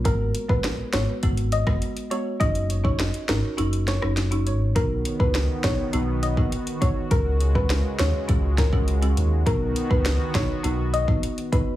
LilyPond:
<<
  \new Staff \with { instrumentName = "Synth pluck" } { \time 4/4 \key ces \lydian \tempo 4 = 102 bes'8 r16 ces''16 r8 des''16 r8. ees''16 r8. des''16 r16 | ees''8 r16 des''16 r8 bes'16 r8. des''16 r4 r16 | bes'8 r16 b'16 r8 des''16 r8. dis''16 r8. des''16 r16 | bes'8 r16 ces''16 r8 des''16 r8. bes'16 r4 r16 |
bes'8 r16 b'16 r8 des''16 r8. dis''16 r8. b'16 r16 | }
  \new Staff \with { instrumentName = "Marimba" } { \time 4/4 \key ces \lydian <aes ces' ges'>16 r8 <aes ces' ges'>8. <aes ces' ges'>8 <aes ces' ges'>16 r8 <aes ces' ges'>8. <aes ces' ges'>8 | <des' ees' ges'>16 r8 <des' ees' ges'>8. <des' ees' ges'>8 <des' ees' ges'>16 r8 <des' ees' ges'>16 r16 <des' ees' ges'>16 r8 | <b dis' fis'>16 r8 <b dis' fis'>8. <b dis' fis'>8 <b dis' fis'>16 r8 <b dis' fis'>8. <b dis' fis'>8 | <aes des' ges'>16 r8 <aes des' ges'>8. <aes des' ges'>8 <aes des' ges'>16 r8 <aes des' ges'>16 r16 <aes des' ges'>16 r8 |
<b dis' fis'>16 r8 <b dis' fis'>8. <b dis' fis'>8 <b dis' fis'>16 r8 <b dis' fis'>8. <b dis' fis'>8 | }
  \new Staff \with { instrumentName = "Analog synth pad" } { \time 4/4 \key ces \lydian << { r1 | r1 | fis'1~ | fis'1 |
fis'1 | } \\ { r1 | r1 | <dis b>1 | <des aes>1 |
<dis b>1 | } >> }
  \new Staff \with { instrumentName = "Sub bass" } { \clef bass \time 4/4 \key ces \lydian aes,,8 r16 bes,,8 r16 aes,,16 r16 aes,,8. ges,,16 r4 | ges,,4~ ges,,16 r16 aes,,16 r16 ges,,8. ges,,8. aes,,8 | b,,8 r16 des,8 r16 b,,16 r16 b,,8. bes,,16 r4 | des,4~ des,16 r16 ees,16 r16 des,8. des,8. ees,8 |
b,,8 r16 des,8 r16 b,,16 r16 b,,8. bes,,16 r4 | }
  \new DrumStaff \with { instrumentName = "Drums" } \drummode { \time 4/4 <hh bd>8 hh16 bd16 <hh sn>8 <hh sn>8 <hh bd>16 hh16 hh16 <bd ss>16 hh16 hh16 hh8 | <hh bd>16 hh16 hh16 bd16 <hh sn>16 hh16 <hh sn>8 hh16 hh16 <hh sn>16 ss16 <hh sn>16 hh16 hh8 | <hh bd>8 hh16 bd16 <hh sn>8 <hh bd sn>8 hh8 hh16 bd16 hh16 hh16 <hh bd>8 | <hh bd>8 hh16 bd16 <hh sn>8 <hh sn>8 <hh bd>8 <hh bd sn>16 bd16 hh16 hh16 hh8 |
<hh bd>8 hh16 bd16 <hh sn>8 <hh bd sn>8 hh8 hh16 bd16 hh16 hh16 <hh bd>8 | }
>>